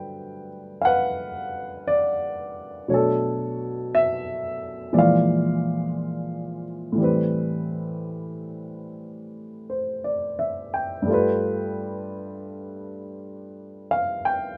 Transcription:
grand piano
Already playing: G2 D3 F#3 A3 B4 G5
0.81 F5 F#5
0.87 B4
1.87 D5
2.88 B2 F#3 A3 D4 C#5
2.94 A4
3.95 E5
4.93 A#2 E3 F3 G#3 D5
4.99 D5 F5
6.92 A2 E3
6.98 G3 C4
7.04 B4
9.70 C5
10.04 D5
10.39 E5
10.74 G5
11.02 G2 G3
11.08 A3 F4
11.13 B4
13.91 F5
14.25 G5

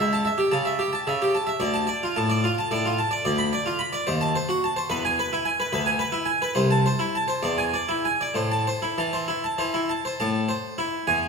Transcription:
harpsichord
0.00 C#2 E5
0.13 A5
0.25 E5
0.38 G4
0.51 C#3 A5
0.65 E5
0.79 G4
0.93 A5
1.07 C#3 E5
1.22 G4
1.35 A5
1.47 E5
1.60 D2 D5
1.74 A5
1.87 D5
2.03 F4
2.16 A2 A5
2.30 D5
2.44 F4
2.58 A5
2.71 A2 D5
2.85 F4
2.99 A5
3.11 D5
3.25 D2 D5
3.38 B5
3.53 D5
3.66 F4
3.79 B5
3.93 D5
4.07 D#2 C5
4.21 A5
4.35 C5
4.49 F#4
4.64 A5
4.76 C5
4.90 E2 B4
5.05 G#5
5.19 B4
5.33 E4
5.45 G#5
5.60 B4
5.73 D2 B4
5.86 G#5
5.99 B4
6.12 E4
6.25 G#5
6.42 B4
6.55 C2 C5
6.71 A5
6.86 C5
6.99 E4
7.15 A5
7.28 C5
7.43 E2 D5
7.58 G#5
7.74 D5
7.89 E4
8.05 G#5
8.21 D5
8.34 A2 C5
8.51 A5
8.67 C5
8.82 E4
8.98 E3 A5
9.13 C5
9.28 E4
9.44 A5
9.58 E3 C5
9.74 E4
9.89 A5
10.05 C5
10.20 A2 A5
10.49 C5
10.78 E4
11.07 E2 G#5

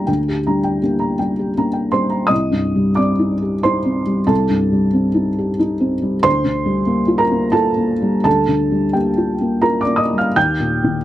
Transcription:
felt piano
Already playing: G3 A#3 D4 G4 G5 A#5
0.07 D2 G5
0.28 G4
0.47 G3 D4 A#5
0.64 G5
0.82 A#3 D4 G4
0.99 A#5
1.19 G3 D4 G5
1.39 G4
1.57 A#3 D4 A#5
1.73 G5
1.92 G3 D4 G4 C5 C6
2.10 A#5
2.27 C2 D#5 D#6
2.51 G2
2.75 G3
2.95 C4 D5 D6
3.19 D#4
3.42 G4
3.63 D#4 C5 C6
3.85 C4
4.07 G3
4.27 C2 A4 A5
4.49 G2
4.72 G3
4.93 C4
5.14 D#4
5.39 G4
5.59 D#4
5.80 C4
6.02 G3
6.23 D2 C5 C6
6.44 D3
6.66 G3
6.86 A#3
7.08 F4
7.18 A#4 A#5
7.31 A#3
7.52 F4 A4 A5
7.77 A#3
8.02 G3
8.24 D2 A4 A5
8.47 D3
8.72 G3
8.93 A#3 G4 G5
9.17 F4
9.41 A#3
9.62 F4 A#4 A#5
9.81 D5 D6
9.87 A#3
9.96 D#5 D#6
10.13 G3
10.18 F5 F6
10.36 D#2 G5 G6
10.60 A#2
10.84 D#3

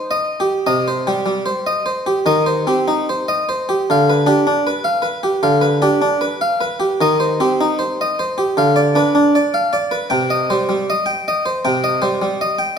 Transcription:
harpsichord
Already playing: C5
0.11 D#5
0.40 G4
0.67 C3 D#5
0.88 C5
1.07 G3 G4
1.26 G3
1.46 C5
1.67 D#5
1.86 C5
2.06 G4
2.26 D#3 D#5
2.46 C5
2.67 C4 G4
2.88 D#4
3.09 C5
3.28 D#5
3.49 C5
3.69 G4
3.90 D3 F5
4.10 B4
4.26 D4 G4
4.47 D4
4.67 B4
4.84 F5
5.02 B4
5.23 G4
5.43 D3 F5
5.61 B4
5.82 D4 G4
6.02 D4
6.21 B4
6.41 F5
6.61 B4
6.80 G4
7.01 D#3 D#5
7.20 C5
7.40 C4 G4
7.61 D#4
7.79 C5
8.01 D#5
8.19 C5
8.38 G4
8.57 D3 F5
8.76 D5
8.95 D4 B4
9.15 D4
9.35 D5
9.54 F5
9.73 D5
9.91 B4
10.10 C3 G5
10.30 D#5
10.50 G3 C5
10.69 G3
10.90 D#5
11.06 G5
11.28 D#5
11.46 C5
11.65 C3 G5
11.84 D#5
12.02 G3 C5
12.22 G3
12.41 D#5
12.59 G5

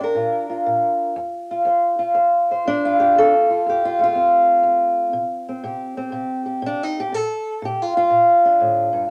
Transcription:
steel-string acoustic guitar
Already playing: A#2
0.01 D4 A#4
0.15 A#2 F4
0.50 F4
0.66 A#2
1.16 F2
1.51 F4
1.65 F2 C5
1.99 F4
2.15 F2 C5
2.51 C5
2.66 F2 D4
2.85 F4
3.00 G4
3.16 F2 A4
3.50 F4
3.66 F2 G4
3.85 F4
3.99 A3
4.04 F4
4.14 F2 C4
4.63 F2
5.13 C3
5.49 C4
5.64 C3 G4
5.97 C4
6.12 C3 G4
6.46 G4
6.62 C3
6.66 D4
6.83 D#4
7.00 G4
7.12 A#2 A4
7.62 A#2 G4
7.82 F4
7.97 F4
8.10 A#2
8.45 D4
8.60 A2
8.93 G2

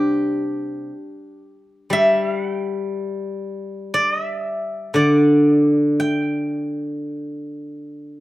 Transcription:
guzheng
Already playing: C3 G3 C4 D4 G4 C5
1.90 G3 E5
2.24 F5
2.39 F#5
2.55 G5
3.94 D5
4.12 D#5
4.24 E5
4.94 D3 D5
6.00 G5
7.57 F#5
7.84 F5
8.11 E5

